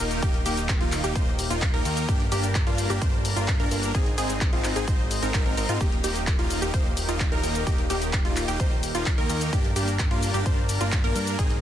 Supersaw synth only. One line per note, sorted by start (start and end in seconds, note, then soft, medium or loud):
0.00 0.20 A#3 medium
0.00 0.20 D#4 medium
0.00 0.20 A#4 medium
0.23 0.35 A#3 medium
0.23 0.35 D#4 medium
0.23 0.35 G4 medium
0.46 0.59 A#3 medium
0.46 0.59 D#4 medium
0.46 0.59 G4 loud
0.81 1.00 A#3 medium
0.81 1.00 D#4 medium
0.81 1.00 F4 medium
1.04 1.14 A#3 medium
1.04 1.14 D#4 medium
1.04 1.14 G4 medium
1.16 1.28 A#3 medium
1.16 1.28 D#4 medium
1.16 1.28 C5 medium
1.50 1.63 A#3 medium
1.50 1.63 D#4 medium
1.50 1.63 F4 medium
1.74 1.84 A#3 loud
1.74 1.84 D#4 loud
1.74 1.84 A#4 loud
1.85 2.06 A#3 medium
1.85 2.06 D#4 medium
1.85 2.06 A#4 medium
2.09 2.21 A#3 medium
2.09 2.21 D4 medium
2.09 2.21 G4 loud
2.32 2.45 A#3 medium
2.32 2.45 D4 medium
2.32 2.45 G4 loud
2.67 2.86 A#3 medium
2.67 2.86 D4 medium
2.67 2.86 F4 medium
2.90 3.00 A#3 medium
2.90 3.00 D4 medium
2.90 3.00 G4 medium
3.02 3.14 A#3 medium
3.02 3.14 D4 medium
3.02 3.14 C5 medium
3.36 3.49 A#3 medium
3.36 3.49 D4 medium
3.36 3.49 F4 medium
3.60 3.70 A#3 loud
3.60 3.70 D4 loud
3.60 3.70 A#4 loud
3.71 3.92 A#3 medium
3.71 3.92 D4 medium
3.71 3.92 A#4 medium
3.95 4.08 C4 medium
3.95 4.08 D#4 medium
3.95 4.08 G#4 medium
4.18 4.31 C4 medium
4.18 4.31 D#4 medium
4.18 4.31 G#4 loud
4.53 4.73 C4 medium
4.53 4.73 D#4 medium
4.53 4.73 F4 medium
4.76 4.86 C4 medium
4.76 4.86 D#4 medium
4.76 4.86 G#4 medium
4.88 5.01 C4 medium
4.88 5.01 D#4 medium
4.88 5.01 C5 medium
5.23 5.31 C4 medium
5.23 5.31 D#4 medium
5.23 5.31 A#4 loud
5.34 5.43 C4 medium
5.34 5.43 D#4 medium
5.34 5.43 A#4 loud
5.46 5.55 C4 loud
5.46 5.55 D#4 loud
5.46 5.55 A#4 loud
5.57 5.67 C4 loud
5.57 5.67 D#4 medium
5.57 5.67 A#4 loud
5.69 5.78 C4 medium
5.69 5.78 D#4 medium
5.69 5.78 F4 medium
5.81 5.94 A#3 medium
5.81 5.94 D#4 medium
5.81 5.94 G4 medium
6.04 6.17 A#3 medium
6.04 6.17 D#4 medium
6.04 6.17 G4 loud
6.39 6.59 A#3 medium
6.39 6.59 D#4 medium
6.39 6.59 F4 medium
6.62 6.72 A#3 medium
6.62 6.72 D#4 medium
6.62 6.72 G4 medium
6.74 6.87 A#3 medium
6.74 6.87 D#4 medium
6.74 6.87 C5 medium
7.09 7.21 A#3 medium
7.09 7.21 D#4 medium
7.09 7.21 F4 medium
7.32 7.42 A#3 loud
7.32 7.42 D#4 loud
7.32 7.42 A#4 loud
7.43 7.64 A#3 medium
7.43 7.64 D#4 medium
7.43 7.64 A#4 medium
7.67 7.80 A#3 medium
7.67 7.80 D#4 medium
7.67 7.80 G4 medium
7.90 8.03 A#3 medium
7.90 8.03 D#4 medium
7.90 8.03 G4 loud
8.25 8.45 A#3 medium
8.25 8.45 D#4 medium
8.25 8.45 F4 medium
8.48 8.58 A#3 medium
8.48 8.58 D#4 medium
8.48 8.58 G4 medium
8.60 8.73 A#3 medium
8.60 8.73 D#4 medium
8.60 8.73 C5 medium
8.95 9.08 A#3 medium
8.95 9.08 D#4 medium
8.95 9.08 F4 medium
9.18 9.28 A#3 loud
9.18 9.28 D#4 medium
9.18 9.28 A#4 loud
9.30 9.50 A#3 medium
9.30 9.50 D#4 medium
9.30 9.50 A#4 medium
9.53 9.66 A#3 medium
9.53 9.66 D4 medium
9.53 9.66 G4 medium
9.76 9.89 A#3 medium
9.76 9.89 D4 medium
9.76 9.89 G4 loud
10.11 10.31 A#3 medium
10.11 10.31 D4 medium
10.11 10.31 F4 medium
10.34 10.44 A#3 medium
10.34 10.44 D4 medium
10.34 10.44 G4 medium
10.46 10.59 A#3 medium
10.46 10.59 D4 medium
10.46 10.59 C5 medium
10.81 10.94 A#3 medium
10.81 10.94 D4 medium
10.81 10.94 F4 medium
11.04 11.14 A#3 loud
11.04 11.14 D4 medium
11.04 11.14 A#4 loud
11.16 11.36 A#3 medium
11.16 11.36 D4 medium
11.16 11.36 A#4 medium
11.39 11.52 C4 medium
11.39 11.52 D#4 medium
11.39 11.52 G#4 medium